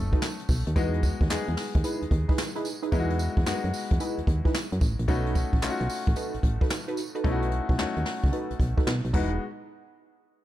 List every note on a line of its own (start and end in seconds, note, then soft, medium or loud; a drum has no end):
0.00 0.17 F#1 loud
0.00 0.77 A3 medium
0.00 0.77 C#4 medium
0.00 0.77 D#4 medium
0.00 0.77 F#4 loud
0.00 0.19 A4 loud
0.12 0.25 D#4 medium
0.12 0.25 F#4 medium
0.12 0.25 A4 medium
0.12 0.25 B4 medium
0.12 kick loud
0.12 closed hi-hat soft
0.22 snare loud
0.22 clap medium
0.22 tambourine loud
0.39 closed hi-hat medium
0.49 0.63 B1 medium
0.49 kick loud
0.49 open hi-hat medium
0.49 tambourine medium
0.67 0.74 D#2 medium
0.67 closed hi-hat medium
0.76 1.12 E2 loud
0.76 1.17 G#3 loud
0.76 1.18 B3 medium
0.76 1.01 D#4 medium
0.76 1.18 D#4 medium
0.76 1.01 E4 medium
0.76 1.18 F#4 loud
0.76 1.02 G#4 medium
0.76 1.02 B4 loud
0.76 kick loud
0.76 closed hi-hat medium
0.76 tambourine medium
0.94 closed hi-hat medium
1.03 kick loud
1.03 closed hi-hat medium
1.03 tambourine medium
1.21 1.28 D#2 medium
1.21 kick medium
1.21 closed hi-hat soft
1.30 1.38 E2 soft
1.30 2.07 G#3 medium
1.30 2.08 B3 medium
1.30 2.08 D#4 medium
1.30 2.08 G#4 medium
1.30 snare loud
1.30 clap loud
1.30 tambourine medium
1.48 1.56 E2 medium
1.48 closed hi-hat soft
1.57 snare medium
1.57 open hi-hat medium
1.57 tambourine medium
1.75 1.83 D#2 medium
1.75 kick medium
1.75 closed hi-hat medium
1.84 2.03 D#4 medium
1.84 2.03 E4 medium
1.84 2.03 G#4 medium
1.84 2.03 B4 medium
1.84 closed hi-hat medium
1.84 tambourine medium
2.02 2.06 D#2 soft
2.02 closed hi-hat soft
2.11 2.26 D#2 loud
2.11 kick medium
2.11 closed hi-hat medium
2.28 2.41 D#4 medium
2.28 2.41 E4 medium
2.28 2.41 G#4 medium
2.28 2.41 B4 medium
2.28 kick loud
2.28 closed hi-hat soft
2.38 snare loud
2.38 clap medium
2.38 tambourine loud
2.55 2.68 D#4 medium
2.55 2.68 E4 medium
2.55 2.68 G#4 medium
2.55 2.68 B4 medium
2.55 closed hi-hat medium
2.65 closed hi-hat medium
2.65 tambourine medium
2.82 2.91 D#4 medium
2.82 2.91 E4 medium
2.82 2.91 G#4 medium
2.82 2.91 B4 medium
2.82 closed hi-hat medium
2.92 3.29 E2 loud
2.92 3.34 G#3 medium
2.92 3.34 B3 medium
2.92 3.17 D#4 medium
2.92 3.34 D#4 medium
2.92 3.18 E4 medium
2.92 3.01 E4 medium
2.92 3.18 G#4 medium
2.92 3.18 B4 loud
2.92 kick loud
2.92 closed hi-hat medium
2.92 tambourine medium
3.00 3.37 F#4 loud
3.10 closed hi-hat medium
3.19 closed hi-hat medium
3.19 tambourine medium
3.37 3.45 E2 medium
3.37 kick medium
3.37 closed hi-hat soft
3.46 3.54 F#2 soft
3.46 4.24 G#3 medium
3.46 4.24 B3 medium
3.46 4.24 D#4 medium
3.46 4.24 F#4 loud
3.46 snare loud
3.46 clap loud
3.46 tambourine loud
3.64 3.72 F#2 medium
3.64 closed hi-hat soft
3.73 open hi-hat medium
3.73 tambourine medium
3.91 3.99 E2 medium
3.91 kick medium
3.91 closed hi-hat soft
4.00 4.19 D#4 medium
4.00 4.20 E4 medium
4.00 4.20 G#4 medium
4.00 4.20 B4 medium
4.00 closed hi-hat medium
4.00 tambourine medium
4.18 4.22 D#2 soft
4.18 closed hi-hat soft
4.27 4.42 D#2 medium
4.27 kick medium
4.27 closed hi-hat medium
4.45 4.57 D#4 medium
4.45 4.57 E4 medium
4.45 4.57 G#4 medium
4.45 4.58 B4 medium
4.45 kick medium
4.45 closed hi-hat soft
4.54 snare loud
4.54 clap medium
4.54 tambourine loud
4.72 4.80 F#2 loud
4.72 closed hi-hat medium
4.81 4.96 A1 medium
4.81 kick loud
4.81 closed hi-hat medium
4.81 tambourine medium
4.99 5.07 A#1 medium
4.99 closed hi-hat soft
5.08 5.45 B1 loud
5.08 5.50 A3 medium
5.08 5.50 C#4 medium
5.08 5.34 D#4 medium
5.08 5.50 D#4 medium
5.08 5.34 F#4 medium
5.08 5.50 F#4 loud
5.08 5.34 A4 medium
5.08 5.34 B4 loud
5.08 kick loud
5.08 closed hi-hat medium
5.08 tambourine medium
5.26 closed hi-hat medium
5.35 kick loud
5.35 closed hi-hat medium
5.35 tambourine medium
5.53 5.61 A1 medium
5.53 kick medium
5.53 closed hi-hat soft
5.62 5.70 B1 soft
5.62 6.40 A3 medium
5.62 6.40 C#4 medium
5.62 6.40 D#4 medium
5.62 5.71 F4 medium
5.62 snare loud
5.62 clap loud
5.62 tambourine medium
5.70 6.44 F#4 loud
5.80 5.88 B1 loud
5.80 closed hi-hat medium
5.89 open hi-hat medium
5.89 tambourine medium
6.07 6.15 A1 loud
6.07 kick loud
6.07 closed hi-hat soft
6.16 6.36 D#4 medium
6.16 6.36 F#4 medium
6.16 6.36 A4 medium
6.16 6.36 B4 medium
6.16 closed hi-hat medium
6.16 tambourine medium
6.34 6.38 A1 soft
6.34 closed hi-hat soft
6.43 6.58 A1 medium
6.43 kick medium
6.43 closed hi-hat medium
6.61 6.73 D#4 medium
6.61 6.73 F#4 medium
6.61 6.74 A4 medium
6.61 6.74 B4 medium
6.61 kick loud
6.61 closed hi-hat soft
6.70 snare loud
6.70 clap medium
6.70 tambourine loud
6.88 7.00 D#4 medium
6.88 7.00 F#4 medium
6.88 7.00 A4 medium
6.88 7.01 B4 medium
6.88 closed hi-hat medium
6.97 closed hi-hat medium
6.97 tambourine medium
7.15 7.23 D#4 medium
7.15 7.23 F#4 medium
7.15 7.23 A4 medium
7.15 7.24 B4 medium
7.15 closed hi-hat soft
7.24 7.61 B1 loud
7.24 7.66 A3 medium
7.24 7.66 C#4 medium
7.24 7.50 D#4 medium
7.24 7.66 D#4 medium
7.24 7.33 E4 medium
7.24 7.50 F#4 medium
7.24 7.50 A4 medium
7.24 7.50 B4 loud
7.24 kick loud
7.24 closed hi-hat medium
7.32 7.70 F#4 loud
7.42 closed hi-hat medium
7.51 closed hi-hat medium
7.69 7.77 B1 loud
7.69 kick medium
7.69 closed hi-hat soft
7.78 7.86 D#2 soft
7.78 8.56 A3 medium
7.78 8.56 C#4 medium
7.78 8.56 D#4 medium
7.78 8.57 F#4 medium
7.78 snare loud
7.78 clap medium
7.96 8.04 D#2 medium
7.96 closed hi-hat soft
8.06 snare medium
8.06 open hi-hat medium
8.23 8.31 C#2 medium
8.23 kick loud
8.23 closed hi-hat medium
8.32 8.52 D#4 medium
8.32 8.52 F#4 medium
8.32 8.52 A4 medium
8.32 8.52 B4 medium
8.32 closed hi-hat medium
8.50 8.54 B1 soft
8.50 closed hi-hat soft
8.60 8.74 B1 medium
8.60 kick medium
8.60 closed hi-hat medium
8.77 8.90 D#4 medium
8.77 8.90 F#4 medium
8.77 8.90 A4 medium
8.77 8.90 B4 medium
8.77 kick loud
8.77 closed hi-hat soft
8.87 9.01 B2 loud
8.87 snare loud
8.87 clap medium
9.04 9.12 B1 loud
9.04 closed hi-hat medium
9.13 9.39 E1 loud
9.13 9.39 G#3 medium
9.13 9.39 B3 medium
9.13 9.35 D#4 medium
9.13 9.39 D#4 medium
9.13 9.35 E4 medium
9.13 9.39 F#4 loud
9.13 9.35 G#4 medium
9.13 9.36 B4 medium
9.13 kick loud
9.13 crash medium